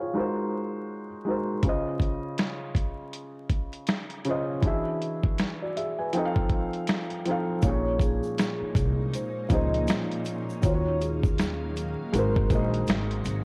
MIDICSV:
0, 0, Header, 1, 7, 480
1, 0, Start_track
1, 0, Key_signature, -5, "minor"
1, 0, Tempo, 750000
1, 1041, Time_signature, 4, 2, 24, 8
1, 8602, End_track
2, 0, Start_track
2, 0, Title_t, "Vibraphone"
2, 0, Program_c, 0, 11
2, 4883, Note_on_c, 0, 73, 94
2, 5098, Note_off_c, 0, 73, 0
2, 5130, Note_on_c, 0, 68, 73
2, 5820, Note_off_c, 0, 68, 0
2, 5855, Note_on_c, 0, 72, 71
2, 6065, Note_off_c, 0, 72, 0
2, 6096, Note_on_c, 0, 75, 74
2, 6306, Note_off_c, 0, 75, 0
2, 6811, Note_on_c, 0, 73, 102
2, 7022, Note_off_c, 0, 73, 0
2, 7047, Note_on_c, 0, 68, 66
2, 7738, Note_off_c, 0, 68, 0
2, 7771, Note_on_c, 0, 70, 90
2, 8003, Note_on_c, 0, 72, 72
2, 8006, Note_off_c, 0, 70, 0
2, 8218, Note_off_c, 0, 72, 0
2, 8602, End_track
3, 0, Start_track
3, 0, Title_t, "Felt piano"
3, 0, Program_c, 1, 0
3, 0, Control_c, 1, 64, 127
3, 0, Note_on_c, 1, 51, 72
3, 0, Note_on_c, 1, 63, 74
3, 0, Note_on_c, 1, 65, 68
3, 0, Note_on_c, 1, 66, 70
3, 0, Note_on_c, 1, 68, 51
3, 0, Note_on_c, 1, 72, 47
3, 0, Note_on_c, 1, 73, 82
3, 0, Note_on_c, 1, 77, 68
3, 0, Note_on_c, 1, 80, 60
3, 2, Note_off_c, 1, 73, 0
3, 2, Note_on_c, 1, 73, 57
3, 8, Note_off_c, 1, 65, 0
3, 8, Note_on_c, 1, 65, 53
3, 86, Note_on_c, 1, 56, 88
3, 91, Control_c, 1, 64, 0
3, 94, Note_off_c, 1, 63, 0
3, 94, Note_off_c, 1, 66, 0
3, 94, Note_off_c, 1, 77, 0
3, 94, Note_off_c, 1, 80, 0
3, 94, Note_on_c, 1, 63, 82
3, 96, Note_off_c, 1, 68, 0
3, 96, Note_off_c, 1, 72, 0
3, 97, Note_off_c, 1, 51, 0
3, 105, Note_on_c, 1, 66, 81
3, 112, Note_on_c, 1, 70, 76
3, 123, Note_on_c, 1, 72, 103
3, 192, Control_c, 1, 64, 127
3, 222, Note_off_c, 1, 73, 0
3, 225, Note_off_c, 1, 65, 0
3, 678, Note_off_c, 1, 56, 0
3, 682, Note_off_c, 1, 63, 0
3, 688, Note_off_c, 1, 66, 0
3, 691, Note_off_c, 1, 70, 0
3, 697, Note_off_c, 1, 72, 0
3, 798, Note_on_c, 1, 56, 82
3, 810, Note_on_c, 1, 63, 72
3, 818, Note_on_c, 1, 66, 71
3, 824, Note_on_c, 1, 70, 71
3, 835, Note_on_c, 1, 72, 84
3, 995, Note_off_c, 1, 56, 0
3, 1000, Note_off_c, 1, 63, 0
3, 1005, Note_off_c, 1, 66, 0
3, 1007, Note_off_c, 1, 70, 0
3, 1013, Note_off_c, 1, 72, 0
3, 1045, Note_on_c, 1, 49, 78
3, 1049, Control_c, 1, 64, 0
3, 1056, Note_on_c, 1, 61, 63
3, 1062, Note_on_c, 1, 65, 68
3, 1073, Note_on_c, 1, 72, 75
3, 1081, Note_on_c, 1, 75, 90
3, 1175, Control_c, 1, 64, 127
3, 1782, Note_off_c, 1, 49, 0
3, 1787, Note_off_c, 1, 61, 0
3, 1790, Note_off_c, 1, 65, 0
3, 1796, Note_off_c, 1, 72, 0
3, 1800, Note_off_c, 1, 75, 0
3, 2721, Note_on_c, 1, 49, 80
3, 2732, Note_on_c, 1, 61, 76
3, 2742, Note_on_c, 1, 65, 69
3, 2750, Note_on_c, 1, 72, 76
3, 2758, Note_on_c, 1, 75, 82
3, 2916, Note_off_c, 1, 49, 0
3, 2921, Note_off_c, 1, 61, 0
3, 2926, Note_off_c, 1, 65, 0
3, 2930, Note_off_c, 1, 72, 0
3, 2934, Note_off_c, 1, 75, 0
3, 2954, Note_on_c, 1, 52, 78
3, 2964, Note_on_c, 1, 62, 72
3, 2971, Control_c, 1, 64, 0
3, 2973, Note_on_c, 1, 66, 71
3, 2981, Note_on_c, 1, 68, 73
3, 2991, Note_on_c, 1, 76, 87
3, 3080, Control_c, 1, 64, 127
3, 3447, Note_off_c, 1, 66, 0
3, 3451, Note_off_c, 1, 68, 0
3, 3456, Note_off_c, 1, 76, 0
3, 3598, Note_on_c, 1, 74, 60
3, 3601, Note_on_c, 1, 66, 48
3, 3684, Note_off_c, 1, 74, 0
3, 3685, Note_off_c, 1, 66, 0
3, 3690, Note_on_c, 1, 76, 64
3, 3695, Note_on_c, 1, 68, 54
3, 3696, Note_off_c, 1, 52, 0
3, 3701, Note_off_c, 1, 62, 0
3, 3822, Note_off_c, 1, 76, 0
3, 3824, Note_off_c, 1, 68, 0
3, 3830, Note_on_c, 1, 80, 64
3, 3835, Note_on_c, 1, 71, 51
3, 3922, Note_on_c, 1, 53, 86
3, 3929, Control_c, 1, 64, 0
3, 3930, Note_on_c, 1, 60, 81
3, 3942, Note_on_c, 1, 63, 82
3, 3949, Note_on_c, 1, 69, 79
3, 3958, Note_on_c, 1, 75, 73
3, 3989, Note_off_c, 1, 75, 0
3, 4001, Note_on_c, 1, 77, 100
3, 4028, Control_c, 1, 64, 127
3, 4055, Note_off_c, 1, 80, 0
3, 4058, Note_off_c, 1, 71, 0
3, 4516, Note_off_c, 1, 53, 0
3, 4520, Note_off_c, 1, 60, 0
3, 4526, Note_off_c, 1, 63, 0
3, 4530, Note_off_c, 1, 69, 0
3, 4556, Note_off_c, 1, 77, 0
3, 4642, Note_on_c, 1, 53, 75
3, 4652, Note_on_c, 1, 60, 70
3, 4660, Note_on_c, 1, 63, 70
3, 4669, Note_on_c, 1, 69, 72
3, 4677, Note_on_c, 1, 77, 83
3, 4836, Note_off_c, 1, 53, 0
3, 4841, Note_off_c, 1, 60, 0
3, 4845, Note_off_c, 1, 63, 0
3, 4850, Note_off_c, 1, 69, 0
3, 4854, Note_off_c, 1, 77, 0
3, 4878, Note_on_c, 1, 46, 71
3, 4887, Note_on_c, 1, 53, 69
3, 4889, Control_c, 1, 64, 0
3, 4894, Note_on_c, 1, 61, 66
3, 4901, Note_on_c, 1, 63, 63
3, 4907, Note_on_c, 1, 68, 64
3, 4916, Note_on_c, 1, 73, 85
3, 5019, Control_c, 1, 64, 127
3, 5618, Note_off_c, 1, 46, 0
3, 5623, Note_off_c, 1, 53, 0
3, 5626, Note_off_c, 1, 61, 0
3, 5630, Note_off_c, 1, 63, 0
3, 5633, Note_off_c, 1, 68, 0
3, 5637, Note_off_c, 1, 73, 0
3, 6071, Note_on_c, 1, 46, 77
3, 6078, Note_on_c, 1, 53, 65
3, 6085, Note_on_c, 1, 61, 66
3, 6093, Note_on_c, 1, 63, 70
3, 6102, Note_on_c, 1, 68, 66
3, 6107, Note_on_c, 1, 72, 80
3, 6642, Note_off_c, 1, 46, 0
3, 6645, Note_off_c, 1, 53, 0
3, 6649, Note_off_c, 1, 61, 0
3, 6653, Note_off_c, 1, 63, 0
3, 6657, Note_off_c, 1, 68, 0
3, 6660, Note_off_c, 1, 72, 0
3, 6794, Note_on_c, 1, 51, 69
3, 6804, Note_on_c, 1, 63, 60
3, 6808, Control_c, 1, 64, 0
3, 6814, Note_on_c, 1, 65, 66
3, 6824, Note_on_c, 1, 66, 58
3, 6832, Note_on_c, 1, 72, 60
3, 6866, Note_off_c, 1, 72, 0
3, 6873, Note_on_c, 1, 73, 73
3, 6931, Control_c, 1, 64, 127
3, 7536, Note_off_c, 1, 51, 0
3, 7542, Note_off_c, 1, 63, 0
3, 7546, Note_off_c, 1, 65, 0
3, 7551, Note_off_c, 1, 66, 0
3, 7575, Note_off_c, 1, 73, 0
3, 7759, Note_on_c, 1, 56, 84
3, 7770, Control_c, 1, 64, 0
3, 7770, Note_on_c, 1, 63, 69
3, 7776, Note_on_c, 1, 66, 69
3, 7789, Note_on_c, 1, 70, 67
3, 7797, Note_on_c, 1, 72, 88
3, 7877, Control_c, 1, 64, 127
3, 7962, Note_off_c, 1, 56, 0
3, 7967, Note_off_c, 1, 63, 0
3, 7970, Note_off_c, 1, 66, 0
3, 7976, Note_off_c, 1, 70, 0
3, 7980, Note_off_c, 1, 72, 0
3, 7996, Note_on_c, 1, 56, 75
3, 8002, Note_on_c, 1, 63, 68
3, 8014, Note_on_c, 1, 66, 62
3, 8021, Note_on_c, 1, 70, 63
3, 8031, Note_on_c, 1, 75, 86
3, 8564, Note_off_c, 1, 56, 0
3, 8567, Note_off_c, 1, 63, 0
3, 8573, Note_off_c, 1, 66, 0
3, 8577, Note_off_c, 1, 70, 0
3, 8582, Note_off_c, 1, 75, 0
3, 8602, End_track
4, 0, Start_track
4, 0, Title_t, "Ambient pad"
4, 0, Program_c, 2, 92
4, 4876, Note_on_c, 2, 56, 75
4, 4876, Note_on_c, 2, 63, 96
4, 4877, Note_on_c, 2, 58, 75
4, 4879, Note_on_c, 2, 61, 80
4, 4882, Note_on_c, 2, 46, 89
4, 6779, Note_off_c, 2, 63, 0
4, 6780, Note_off_c, 2, 56, 0
4, 6780, Note_off_c, 2, 58, 0
4, 6782, Note_off_c, 2, 46, 0
4, 6804, Note_on_c, 2, 51, 84
4, 6806, Note_on_c, 2, 54, 74
4, 6806, Note_on_c, 2, 77, 90
4, 6808, Note_on_c, 2, 58, 75
4, 7735, Note_off_c, 2, 61, 0
4, 7754, Note_off_c, 2, 77, 0
4, 7754, Note_on_c, 2, 56, 80
4, 7754, Note_on_c, 2, 63, 76
4, 7754, Note_on_c, 2, 66, 88
4, 7755, Note_off_c, 2, 58, 0
4, 8602, Note_off_c, 2, 51, 0
4, 8602, Note_off_c, 2, 54, 0
4, 8602, Note_off_c, 2, 56, 0
4, 8602, Note_off_c, 2, 63, 0
4, 8602, Note_off_c, 2, 66, 0
4, 8602, End_track
5, 0, Start_track
5, 0, Title_t, "Upright bass"
5, 0, Program_c, 3, 32
5, 4882, Note_on_c, 3, 34, 97
5, 5242, Note_off_c, 3, 34, 0
5, 5602, Note_on_c, 3, 36, 85
5, 5828, Note_off_c, 3, 36, 0
5, 6080, Note_on_c, 3, 37, 94
5, 6306, Note_off_c, 3, 37, 0
5, 6806, Note_on_c, 3, 39, 94
5, 7641, Note_off_c, 3, 39, 0
5, 7765, Note_on_c, 3, 32, 99
5, 7989, Note_off_c, 3, 32, 0
5, 8000, Note_on_c, 3, 34, 88
5, 8226, Note_off_c, 3, 34, 0
5, 8246, Note_on_c, 3, 32, 85
5, 8469, Note_off_c, 3, 32, 0
5, 8484, Note_on_c, 3, 32, 82
5, 8602, Note_off_c, 3, 32, 0
5, 8602, End_track
6, 0, Start_track
6, 0, Title_t, "Muted upright bass strokes"
6, 5510, Note_on_c, 9, 29, 43
6, 5574, Note_off_c, 9, 29, 0
6, 8602, End_track
7, 0, Start_track
7, 0, Title_t, "Drums"
7, 1041, Note_on_c, 9, 42, 68
7, 1042, Note_on_c, 9, 36, 97
7, 1105, Note_off_c, 9, 42, 0
7, 1106, Note_off_c, 9, 36, 0
7, 1277, Note_on_c, 9, 36, 74
7, 1289, Note_on_c, 9, 42, 43
7, 1341, Note_off_c, 9, 36, 0
7, 1353, Note_off_c, 9, 42, 0
7, 1522, Note_on_c, 9, 42, 81
7, 1530, Note_on_c, 9, 38, 107
7, 1586, Note_off_c, 9, 42, 0
7, 1594, Note_off_c, 9, 38, 0
7, 1759, Note_on_c, 9, 36, 82
7, 1768, Note_on_c, 9, 42, 63
7, 1823, Note_off_c, 9, 36, 0
7, 1832, Note_off_c, 9, 42, 0
7, 2004, Note_on_c, 9, 42, 71
7, 2068, Note_off_c, 9, 42, 0
7, 2236, Note_on_c, 9, 42, 56
7, 2237, Note_on_c, 9, 36, 72
7, 2300, Note_off_c, 9, 42, 0
7, 2301, Note_off_c, 9, 36, 0
7, 2387, Note_on_c, 9, 42, 36
7, 2451, Note_off_c, 9, 42, 0
7, 2476, Note_on_c, 9, 42, 75
7, 2488, Note_on_c, 9, 38, 112
7, 2540, Note_off_c, 9, 42, 0
7, 2552, Note_off_c, 9, 38, 0
7, 2625, Note_on_c, 9, 42, 39
7, 2689, Note_off_c, 9, 42, 0
7, 2719, Note_on_c, 9, 42, 61
7, 2783, Note_off_c, 9, 42, 0
7, 2962, Note_on_c, 9, 36, 105
7, 2962, Note_on_c, 9, 42, 68
7, 3026, Note_off_c, 9, 36, 0
7, 3026, Note_off_c, 9, 42, 0
7, 3211, Note_on_c, 9, 42, 50
7, 3275, Note_off_c, 9, 42, 0
7, 3350, Note_on_c, 9, 36, 94
7, 3414, Note_off_c, 9, 36, 0
7, 3445, Note_on_c, 9, 42, 82
7, 3453, Note_on_c, 9, 38, 105
7, 3509, Note_off_c, 9, 42, 0
7, 3517, Note_off_c, 9, 38, 0
7, 3691, Note_on_c, 9, 42, 66
7, 3755, Note_off_c, 9, 42, 0
7, 3922, Note_on_c, 9, 42, 73
7, 3986, Note_off_c, 9, 42, 0
7, 4069, Note_on_c, 9, 36, 91
7, 4133, Note_off_c, 9, 36, 0
7, 4156, Note_on_c, 9, 42, 61
7, 4157, Note_on_c, 9, 36, 80
7, 4220, Note_off_c, 9, 42, 0
7, 4221, Note_off_c, 9, 36, 0
7, 4309, Note_on_c, 9, 42, 37
7, 4373, Note_off_c, 9, 42, 0
7, 4397, Note_on_c, 9, 42, 78
7, 4410, Note_on_c, 9, 38, 107
7, 4461, Note_off_c, 9, 42, 0
7, 4474, Note_off_c, 9, 38, 0
7, 4545, Note_on_c, 9, 42, 40
7, 4609, Note_off_c, 9, 42, 0
7, 4642, Note_on_c, 9, 42, 58
7, 4706, Note_off_c, 9, 42, 0
7, 4876, Note_on_c, 9, 82, 70
7, 4880, Note_on_c, 9, 42, 75
7, 4882, Note_on_c, 9, 36, 106
7, 4940, Note_off_c, 9, 82, 0
7, 4944, Note_off_c, 9, 42, 0
7, 4946, Note_off_c, 9, 36, 0
7, 5117, Note_on_c, 9, 36, 81
7, 5125, Note_on_c, 9, 82, 47
7, 5127, Note_on_c, 9, 42, 53
7, 5181, Note_off_c, 9, 36, 0
7, 5189, Note_off_c, 9, 82, 0
7, 5191, Note_off_c, 9, 42, 0
7, 5269, Note_on_c, 9, 82, 43
7, 5333, Note_off_c, 9, 82, 0
7, 5365, Note_on_c, 9, 42, 89
7, 5373, Note_on_c, 9, 38, 114
7, 5375, Note_on_c, 9, 82, 69
7, 5429, Note_off_c, 9, 42, 0
7, 5437, Note_off_c, 9, 38, 0
7, 5439, Note_off_c, 9, 82, 0
7, 5600, Note_on_c, 9, 36, 92
7, 5605, Note_on_c, 9, 82, 44
7, 5609, Note_on_c, 9, 42, 71
7, 5664, Note_off_c, 9, 36, 0
7, 5669, Note_off_c, 9, 82, 0
7, 5673, Note_off_c, 9, 42, 0
7, 5846, Note_on_c, 9, 42, 76
7, 5851, Note_on_c, 9, 82, 59
7, 5910, Note_off_c, 9, 42, 0
7, 5915, Note_off_c, 9, 82, 0
7, 6077, Note_on_c, 9, 82, 46
7, 6080, Note_on_c, 9, 36, 80
7, 6081, Note_on_c, 9, 42, 64
7, 6141, Note_off_c, 9, 82, 0
7, 6144, Note_off_c, 9, 36, 0
7, 6145, Note_off_c, 9, 42, 0
7, 6235, Note_on_c, 9, 42, 39
7, 6299, Note_off_c, 9, 42, 0
7, 6319, Note_on_c, 9, 82, 71
7, 6323, Note_on_c, 9, 42, 74
7, 6336, Note_on_c, 9, 38, 111
7, 6383, Note_off_c, 9, 82, 0
7, 6387, Note_off_c, 9, 42, 0
7, 6400, Note_off_c, 9, 38, 0
7, 6474, Note_on_c, 9, 42, 46
7, 6538, Note_off_c, 9, 42, 0
7, 6559, Note_on_c, 9, 82, 52
7, 6566, Note_on_c, 9, 42, 66
7, 6623, Note_off_c, 9, 82, 0
7, 6630, Note_off_c, 9, 42, 0
7, 6717, Note_on_c, 9, 82, 49
7, 6781, Note_off_c, 9, 82, 0
7, 6800, Note_on_c, 9, 82, 72
7, 6804, Note_on_c, 9, 36, 105
7, 6805, Note_on_c, 9, 42, 77
7, 6864, Note_off_c, 9, 82, 0
7, 6868, Note_off_c, 9, 36, 0
7, 6869, Note_off_c, 9, 42, 0
7, 7048, Note_on_c, 9, 82, 46
7, 7051, Note_on_c, 9, 42, 50
7, 7112, Note_off_c, 9, 82, 0
7, 7115, Note_off_c, 9, 42, 0
7, 7191, Note_on_c, 9, 36, 101
7, 7196, Note_on_c, 9, 82, 45
7, 7255, Note_off_c, 9, 36, 0
7, 7260, Note_off_c, 9, 82, 0
7, 7285, Note_on_c, 9, 42, 82
7, 7294, Note_on_c, 9, 38, 104
7, 7299, Note_on_c, 9, 82, 67
7, 7349, Note_off_c, 9, 42, 0
7, 7358, Note_off_c, 9, 38, 0
7, 7363, Note_off_c, 9, 82, 0
7, 7529, Note_on_c, 9, 82, 45
7, 7532, Note_on_c, 9, 42, 67
7, 7593, Note_off_c, 9, 82, 0
7, 7596, Note_off_c, 9, 42, 0
7, 7766, Note_on_c, 9, 42, 76
7, 7774, Note_on_c, 9, 82, 60
7, 7830, Note_off_c, 9, 42, 0
7, 7838, Note_off_c, 9, 82, 0
7, 7911, Note_on_c, 9, 36, 97
7, 7975, Note_off_c, 9, 36, 0
7, 7999, Note_on_c, 9, 36, 84
7, 8001, Note_on_c, 9, 42, 64
7, 8001, Note_on_c, 9, 82, 44
7, 8063, Note_off_c, 9, 36, 0
7, 8065, Note_off_c, 9, 42, 0
7, 8065, Note_off_c, 9, 82, 0
7, 8151, Note_on_c, 9, 42, 39
7, 8215, Note_off_c, 9, 42, 0
7, 8236, Note_on_c, 9, 82, 63
7, 8241, Note_on_c, 9, 42, 78
7, 8254, Note_on_c, 9, 38, 116
7, 8300, Note_off_c, 9, 82, 0
7, 8305, Note_off_c, 9, 42, 0
7, 8318, Note_off_c, 9, 38, 0
7, 8390, Note_on_c, 9, 42, 45
7, 8454, Note_off_c, 9, 42, 0
7, 8478, Note_on_c, 9, 82, 48
7, 8485, Note_on_c, 9, 42, 64
7, 8542, Note_off_c, 9, 82, 0
7, 8549, Note_off_c, 9, 42, 0
7, 8602, End_track
0, 0, End_of_file